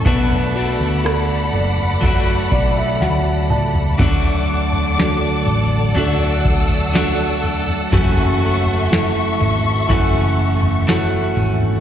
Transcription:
Already playing: string section A4
0.05 fingered electric bass B1, clean electric guitar B2 F#3 A3 D4 F#4, felt piano B3, string section D5 F#5 B5, kick, floor tom
0.54 clean electric guitar A3 D4 F#4, felt piano F#4
0.80 fingered electric bass D2
1.04 felt piano A4, cross-stick
1.53 fingered electric bass F#1, felt piano D5
1.78 floor tom
2.01 clean electric guitar F#3 A3 D4, felt piano F#4, kick, floor tom
2.06 clean electric guitar F#4
2.51 fingered electric bass B1, felt piano D5, kick
2.76 felt piano E5
3.00 fingered electric bass D2, felt piano F#4 F#5, snare
3.49 fingered electric bass C#2, felt piano D5 A5, mid tom
3.75 floor tom
3.98 fingered electric bass D2, clean electric guitar D3 F#3 A3 D4 F#4, felt piano D3, string section A4 D5 F#5 D6, kick, floor tom, crash
4.73 floor tom
4.97 felt piano D4 F#4 A4, snare
5.46 fingered electric bass A1, floor tom
5.95 fingered electric bass D2, clean electric guitar F#3 A3 D4 F#4, felt piano D4 F#4 A4, string section E6, floor tom
6.45 kick
6.69 floor tom
6.93 clean electric guitar F#3 A3 D4 F#4, felt piano D4 F#4 A4, snare
7.44 floor tom
7.68 floor tom
7.92 fingered electric bass F#1, clean electric guitar F#2 C#3 E3 A3 C#4 F#4, felt piano F#3, string section E5 C#6, kick, floor tom
8.41 clean electric guitar E3 A3 C#4 F#4
8.66 floor tom
8.91 felt piano E4 F#4 A4, snare
9.40 fingered electric bass G#1, floor tom
9.89 fingered electric bass F#1, clean electric guitar E3 A3 C#4 F#4, felt piano E4 F#4 A4, kick, floor tom
10.63 floor tom
10.87 clean electric guitar E3 A3 C#4 F#4, felt piano E4 F#4 A4, snare
11.37 fingered electric bass G#1, floor tom
11.62 floor tom

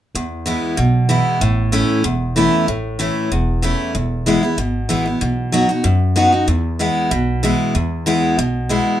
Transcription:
0.15 upright bass E2, steel-string acoustic guitar E2
0.46 steel-string acoustic guitar E3 G#3 B3 E4
0.77 upright bass B1, steel-string acoustic guitar B2
1.09 steel-string acoustic guitar E3 G#3 B3 E4
1.41 upright bass A1, steel-string acoustic guitar A2
1.72 steel-string acoustic guitar E3 A3 C#4 E4
2.04 upright bass E1, steel-string acoustic guitar E2
2.36 steel-string acoustic guitar E3 A3 C#4 E4
2.68 upright bass A1, steel-string acoustic guitar A2
2.99 steel-string acoustic guitar E3 A3 C#4 E4
3.32 upright bass E1, steel-string acoustic guitar E2
3.62 steel-string acoustic guitar E3 A3 C#4 E4
3.95 upright bass E1, steel-string acoustic guitar E2
4.26 steel-string acoustic guitar E3 G#3 B3 E4
4.43 steel-string acoustic guitar B3 E4
4.58 upright bass G#1, steel-string acoustic guitar B2
4.89 upright bass A1, steel-string acoustic guitar E3 G#3 B3 E4
5.06 steel-string acoustic guitar B3 E4
5.21 upright bass B1, steel-string acoustic guitar B2
5.52 steel-string acoustic guitar F#3 B3 D#4 F#4
5.69 steel-string acoustic guitar D#4 F#4
5.84 steel-string acoustic guitar F#2, upright bass F#2
6.16 steel-string acoustic guitar F#3 B3 D#4 F#4
6.32 steel-string acoustic guitar D#4 F#4
6.48 upright bass E2, steel-string acoustic guitar E2
6.79 steel-string acoustic guitar E3 G#3 B3 E4
7.11 upright bass B1, steel-string acoustic guitar B2
7.43 steel-string acoustic guitar E3 G#3 B3 E4
7.75 steel-string acoustic guitar E2, upright bass E2
8.06 steel-string acoustic guitar E3 G#3 B3 E4
8.38 upright bass B1, steel-string acoustic guitar B2
8.69 steel-string acoustic guitar E3 G#3 B3 E4

